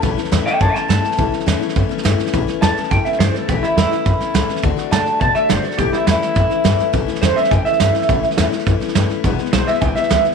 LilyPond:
<<
  \new Staff \with { instrumentName = "Clean electric guitar" } { \time 4/4 \key a \mixolydian \tempo 4 = 208 r4. <e'' g''>8 <cis'' a''>8 <a'' c'''>8 a''4~ | a''2 r2 | r4 a''4 g''8 e''8 c''8 a'8 | g'8 e'8 e'2. |
r4 a''4 a''8 e''8 c''8 a'8 | g'8 e'8 e'2. | r4 c''8 e''8 g''8 e''4.~ | e''4. r2 r8 |
r4 c''8 e''8 g''8 e''4. | }
  \new Staff \with { instrumentName = "Steel-string acoustic guitar" } { \time 4/4 \key a \mixolydian <a, e a cis' e'>8 <a cis' e'>8 <a, e a cis' e'>8 <a cis' e'>8 <e a cis' e'>8 <a cis' e'>8 <a, e a cis' e'>8 <a cis' e'>8 | <a, e a cis' e'>8 <a cis' e'>8 <a, e a cis' e'>8 <a cis' e'>8 <e a cis' e'>8 <a cis' e'>8 <a, e a cis' e'>8 <a cis' e'>8 | <a, e a cis' e'>8 <a cis' e'>8 <a, e a cis' e'>8 <a cis' e'>8 <e a cis' e'>8 <a cis' e'>8 <a, e a cis' e'>8 <a cis' e'>8 | <a, e a cis' e'>8 <a cis' e'>8 <a, e a cis' e'>8 <a cis' e'>8 <e a cis' e'>8 <a cis' e'>8 <a, e a cis' e'>8 <a cis' e'>8 |
<d a d' fis'>8 <a d' fis'>8 <d a d' fis'>8 <a d' fis'>8 <d a fis'>8 <a d' fis'>8 <d a d' fis'>8 <a d' fis'>8 | <a, e a cis' e'>8 <a cis' e'>8 <a, e a cis' e'>8 <a cis' e'>8 <e a cis' e'>8 <a cis' e'>8 <a, e a cis' e'>8 <a cis' e'>8 | <a, e a cis' e'>8 <a cis' e'>8 <a, e a cis' e'>8 <a cis' e'>8 <e a cis' e'>8 <a cis' e'>8 <a, e a cis' e'>8 <a cis' e'>8 | <a, e a cis' e'>8 <a cis' e'>8 <a, e a cis' e'>8 <a cis' e'>8 <e a cis' e'>8 <a cis' e'>8 <a, e a cis' e'>8 <a cis' e'>8 |
<e, b, e gis b e'>8 <e gis b e'>8 <e, b, e gis b e'>8 <e gis b e'>8 <e gis b e'>8 <e gis b e'>8 <e, b, e gis b e'>8 <e gis b e'>8 | }
  \new Staff \with { instrumentName = "Upright bass" } { \clef bass \time 4/4 \key a \mixolydian a,,8 r8 e,8 r8 fis,8 r8 g,8 r8 | a,,8 r8 e,8 r8 fis,8 r8 g,8 r8 | a,,8 r8 e,8 r8 fis,8 r8 g,8 r8 | a,,8 r8 e,8 r8 fis,8 r8 cis,8 r8 |
d,8 r8 a,8 r8 b,8 r8 g,,8 r8 | a,,8 r8 e,8 r8 fis,8 r8 g,8 r8 | a,,8 r8 e,8 r8 fis,8 r8 g,8 r8 | a,,8 r8 e,8 r8 fis,8 r8 g,8 r8 |
e,,8 r8 b,,8 r8 cis,8 r8 cis,8 r8 | }
  \new DrumStaff \with { instrumentName = "Drums" } \drummode { \time 4/4 <bd sn>8 sn16 sn16 <hhp sn>8 sn8 <bd sn>8 sn8 <hhp sn>8 sn16 sn16 | <bd sn>8 sn16 sn16 <hhp sn>8 sn16 sn16 <bd sn>8 sn16 sn16 <hhp sn>8 sn16 sn16 | <bd sn>8 sn8 <hhp sn>8 sn16 sn16 <bd sn>8 sn16 sn16 <hhp sn>8 sn8 | <bd sn>8 sn8 <hhp sn>8 sn8 <bd sn>8 sn8 <hhp sn>8 sn16 sn16 |
<bd sn>8 sn8 <hhp sn>8 sn8 <bd sn>8 sn8 <hhp sn>8 sn16 sn16 | <bd sn>8 sn8 <hhp sn>8 sn8 <bd sn>8 sn8 <hhp sn>8 sn8 | <bd sn>8 sn16 sn16 <hhp sn>8 sn16 sn16 <bd sn>8 sn16 sn16 <hhp sn>8 sn16 sn16 | <bd sn>8 sn16 sn16 <hhp sn>8 sn16 sn16 <bd sn>8 sn16 sn16 <hhp sn>8 sn8 |
<bd sn>8 sn16 sn16 <hhp sn>8 sn16 sn16 <bd sn>8 sn16 sn16 <hhp sn>8 sn8 | }
>>